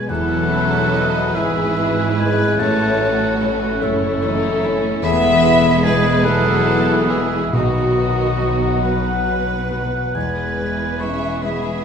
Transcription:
Already playing: B2 F#3 B3 F#4 B4 G#5
0.08 E1 E2 E3 F#3 B3 E4 A4 B4 F#5
0.51 C#4 E4 B4
0.72 E4
0.93 B3 E4 B4 D#5
1.15 B5
1.35 G#1 G#2 E3 G#3 E4 G#4 B4 E5 G#5
1.56 B5
1.78 E4 B4
1.98 G#4
2.18 G#3 E4 B4 G#5
2.39 C#4
2.59 A1 A2 E3 A3 C#4 F#4 A4 C#5 A5
2.80 A3
3.01 F#3 E4 C#5
3.21 C#5
3.41 A3 E4 A4 C#5
3.81 F#1 F#2 A3 E4 A4 C#5 C#6
4.22 E3 D#4 A4 C#5
4.42 C#5
4.63 A3 C#4 E4 C#5
4.83 A3
5.03 E1 E2 E3 G#3 B3 E4 G#4 E5 B5
5.24 E4
5.43 E4 B4
5.83 G#3 E4 B4 E5 G#5
6.04 B5
6.24 E3 F#3 B3 E4 A4 B4 F#5 G#5
6.46 B5
6.67 E4 B4 E5
6.88 G#4
7.10 E3 G#3 E4 G#4 B4 E5
7.31 E4
7.53 B1 B2 D#3 F#3 B3 D#4 F#4 D#5
7.75 F#3
7.97 F#4 B4
8.18 B4
8.40 F#3 F#4 B4
8.62 F#5
8.82 F#3 F#4 B4 F#5 B5
9.05 F#5
9.26 F#4 B4
9.48 B4
9.70 F#3 F#4 B4
9.92 F#3
10.14 E1 E2 E3 G#3 B3 E4 G#4 B4 G#5
10.36 G#3
10.57 E4 B4
10.79 B4
11.00 G#3 C#4 E4 G#4 B4 E5 C#6
11.20 E5
11.41 G#3 B3 E4 G#4 B4 E5 B5
11.63 E5

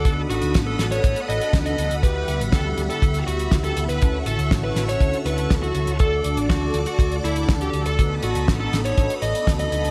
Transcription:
Already playing: A4 F#5
0.05 D2 B3 D4 D#4 F#4 A4 B5 D#6, kick, closed hi-hat
0.30 A1 F#4, closed hi-hat
0.42 D2, closed hi-hat
0.54 kick, snare, closed hi-hat
0.67 A4
0.79 A1, snare, closed hi-hat
0.91 C#5, closed hi-hat
1.04 A1, kick, closed hi-hat
1.16 closed hi-hat
1.29 A1 D#5, closed hi-hat
1.41 closed hi-hat
1.53 D2, kick, snare, closed hi-hat
1.66 D#5, closed hi-hat
1.78 D2 D3 B3 D#4 F#4 A4, closed hi-hat
1.91 D2, closed hi-hat
2.03 D3 G3 B3 E4 F#4 G4 B4 E5, kick, closed hi-hat
2.28 D2, closed hi-hat
2.40 A1, closed hi-hat
2.52 D2 A4, kick, snare, closed hi-hat
2.78 D2, closed hi-hat
2.90 A4, closed hi-hat
3.02 D2, kick, closed hi-hat
3.14 closed hi-hat
3.27 D2 F#4, closed hi-hat
3.39 closed hi-hat
3.51 D2, kick, snare, closed hi-hat
3.64 A4, closed hi-hat
3.77 D2 B3 E4 F#4 G4, closed hi-hat
3.89 D2 B4, closed hi-hat
4.01 D2 D3 C#4 E4 F#4 A4 C#6, kick, closed hi-hat
4.26 A1 A4, closed hi-hat
4.39 D2, closed hi-hat
4.51 A1, kick, snare, closed hi-hat
4.64 B4
4.76 A1, snare, closed hi-hat
4.89 C#5, closed hi-hat
5.00 D2, kick, closed hi-hat
5.13 closed hi-hat
5.26 D2 B4, closed hi-hat
5.38 closed hi-hat
5.50 D2, kick, snare, closed hi-hat
5.63 D3 C#4 E4 F#4 A4, closed hi-hat
5.75 D2, closed hi-hat
5.87 D2, closed hi-hat
5.99 D2 D3 A3 D4 F#4 A4 D5 D6, kick, closed hi-hat
6.24 D2, closed hi-hat
6.37 A1, closed hi-hat
6.49 D2 F#4, kick, snare, closed hi-hat
6.74 D2, closed hi-hat
6.86 F#4, closed hi-hat
6.99 D2, kick, closed hi-hat
7.12 closed hi-hat
7.24 D2 E4, closed hi-hat
7.36 closed hi-hat
7.49 D2, kick, snare, closed hi-hat
7.61 G4, closed hi-hat
7.73 D2 D3 A3 D4 F#4 A4, closed hi-hat
7.86 D2 A4, closed hi-hat
7.98 D2 B3 D4 D#4 F#4 A4 B5 D#6, kick, closed hi-hat
8.23 A1 F#4, closed hi-hat
8.35 D2, closed hi-hat
8.48 A1, kick, snare, closed hi-hat
8.60 A4
8.73 A1, snare, closed hi-hat
8.85 C#5, closed hi-hat
8.98 A1, kick, closed hi-hat
9.10 closed hi-hat
9.22 A1 D#5, closed hi-hat
9.35 closed hi-hat
9.47 D2, kick, snare, closed hi-hat
9.59 D#5, closed hi-hat
9.72 D2 D3 B3 D#4 F#4 A4, closed hi-hat
9.85 D2, closed hi-hat

